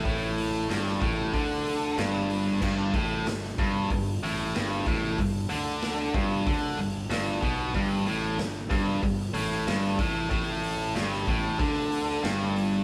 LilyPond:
<<
  \new Staff \with { instrumentName = "Distorted electric guitar" } { \clef bass \time 4/4 \key g \lydian \tempo 4 = 94 a,4 g,8 a,8 d4 g,4 | g,8 a,8 g,8 g,8 g,8 a,8 g,8 a,8 | g,8 d4 g,8 d8 g,8 g,8 b,8 | g,8 a,8 g,8 g,8 g,8 a,8 g,8 a,8 |
a,4 g,8 a,8 d4 g,4 | }
  \new Staff \with { instrumentName = "Fingered electric bass" } { \clef bass \time 4/4 \key g \lydian a,,4 g,,8 a,,8 d,4 g,,4 | g,,8 a,,8 g,,8 g,,8 g,,8 a,,8 g,,8 a,,8 | g,,8 d,4 g,,8 d,8 g,,8 g,,8 b,,8 | g,,8 a,,8 g,,8 g,,8 g,,8 a,,8 g,,8 a,,8 |
a,,4 g,,8 a,,8 d,4 g,,4 | }
  \new DrumStaff \with { instrumentName = "Drums" } \drummode { \time 4/4 <hho bd>8 hho8 <hho sn>16 sn16 <hho bd>8 <hho bd>8 hho8 <hho sn>8 hho8 | <cymc bd>8 <hho bd>8 <hho sn>16 sn16 <hho bd>8 <hho bd>8 hho8 <hho sn>8 <hho bd>8 | <hho bd>8 hho8 <hho sn>8 <hho bd>8 <hho bd>8 hho8 <hho sn>8 <hho bd>8 | <hho bd>8 hho8 <hho sn>8 <hho bd>8 <hho bd>8 hho8 <hho sn>8 <hho bd>8 |
<hho bd>8 hho8 <hho sn>16 sn16 <hho bd>8 <hho bd>8 hho8 <hho sn>8 hho8 | }
>>